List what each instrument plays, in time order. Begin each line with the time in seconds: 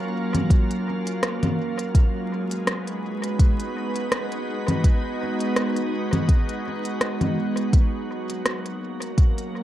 Already playing: ambient pad F#3 A#3 C#4 F4 A#4
0.35 closed hi-hat, low conga
0.50 kick, closed hi-hat
0.71 closed hi-hat
1.07 closed hi-hat
1.23 cross-stick, closed hi-hat
1.43 closed hi-hat, low conga
1.79 closed hi-hat
1.95 ambient pad G#3, kick, closed hi-hat
2.19 ambient pad B3
2.25 ambient pad F#4
2.43 ambient pad B4
2.51 closed hi-hat
2.67 ambient pad D#4, cross-stick, closed hi-hat
2.87 closed hi-hat
3.23 closed hi-hat
3.39 kick, closed hi-hat
3.60 closed hi-hat
3.96 closed hi-hat
4.12 cross-stick, closed hi-hat
4.32 closed hi-hat
4.68 closed hi-hat, low conga
4.84 kick, closed hi-hat
5.40 closed hi-hat
5.56 cross-stick, closed hi-hat
5.77 closed hi-hat
6.13 closed hi-hat, low conga
6.29 kick, closed hi-hat
6.49 closed hi-hat
6.85 closed hi-hat
7.01 cross-stick, closed hi-hat
7.21 closed hi-hat, low conga
7.57 closed hi-hat
7.73 ambient pad F#3, kick, closed hi-hat
8.30 ambient pad A#3, closed hi-hat
8.45 cross-stick, closed hi-hat
8.66 closed hi-hat
9.02 closed hi-hat
9.16 ambient pad C#4, kick, closed hi-hat
9.21 ambient pad F4
9.38 closed hi-hat